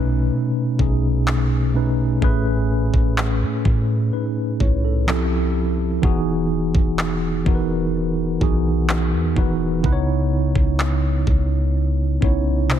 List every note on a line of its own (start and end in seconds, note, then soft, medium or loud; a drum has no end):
0.00 0.30 B1 loud
0.00 0.78 B2 loud
0.00 0.79 A3 loud
0.00 0.80 C#4 loud
0.00 0.80 D#4 loud
0.00 1.77 B4 loud
0.78 2.18 B1 loud
0.78 1.63 B2 medium
0.78 1.63 A3 medium
0.78 1.64 C#4 medium
0.78 1.64 D#4 medium
0.78 1.64 G#4 medium
0.78 kick medium
1.28 clap loud
1.73 2.16 B2 medium
1.73 2.16 A3 medium
1.73 2.17 C#4 medium
1.73 2.17 D#4 medium
1.73 2.18 B4 medium
2.21 2.91 A1 loud
2.21 3.90 A2 loud
2.21 3.90 A3 loud
2.21 3.91 C#4 loud
2.21 3.91 G#4 loud
2.21 3.91 B4 loud
2.21 kick loud
2.94 3.43 A1 loud
2.94 kick loud
3.18 clap loud
3.42 3.64 A2 loud
3.65 4.11 A2 loud
3.65 kick medium
4.13 4.58 D#4 medium
4.13 4.58 B4 medium
4.60 5.99 C2 loud
4.60 4.83 E4 medium
4.60 4.83 C#5 medium
4.60 kick medium
4.85 5.30 C#4 soft
4.85 5.09 A4 medium
5.07 5.91 F3 medium
5.07 5.92 C4 medium
5.07 5.92 E4 medium
5.07 5.93 G4 medium
5.07 5.93 A4 loud
5.07 clap loud
6.02 6.72 E1 loud
6.02 7.29 E3 loud
6.02 7.29 B3 loud
6.02 7.29 D#4 loud
6.02 7.30 F#4 loud
6.02 7.30 G#4 loud
6.02 kick loud
6.75 7.43 E1 medium
6.75 kick loud
6.99 clap loud
7.45 8.38 E1 loud
7.45 8.30 E3 medium
7.45 8.30 B3 medium
7.45 8.30 D#4 medium
7.45 8.31 F#4 medium
7.45 7.54 A#4 medium
7.45 kick medium
7.55 8.34 B4 medium
8.40 9.15 B1 loud
8.40 9.25 E3 medium
8.40 9.25 B3 medium
8.40 9.25 D#4 medium
8.40 9.26 F#4 medium
8.40 9.26 G#4 medium
8.40 kick medium
8.89 clap loud
9.13 9.36 E2 loud
9.35 9.82 E1 loud
9.35 9.78 E3 medium
9.35 9.78 B3 medium
9.35 9.79 D#4 medium
9.35 9.79 F#4 medium
9.35 9.80 B4 medium
9.35 kick medium
9.83 10.53 C#2 loud
9.83 11.52 C#3 loud
9.83 11.52 B3 loud
9.83 11.52 D#4 medium
9.83 11.53 E4 medium
9.83 9.91 B4 medium
9.83 kick loud
9.92 11.56 C#5 loud
10.55 11.24 C#2 medium
10.55 kick medium
10.80 clap loud
11.27 12.19 C#2 loud
11.27 kick loud
12.21 12.79 C2 loud
12.21 12.70 B3 medium
12.21 12.69 C#4 medium
12.21 12.70 D#4 medium
12.21 12.70 E4 medium
12.21 12.71 C#5 medium
12.21 kick medium
12.68 12.79 C3 medium
12.68 12.79 A#3 medium
12.68 12.79 D4 medium
12.68 12.79 E4 medium
12.68 12.79 C5 loud
12.68 clap loud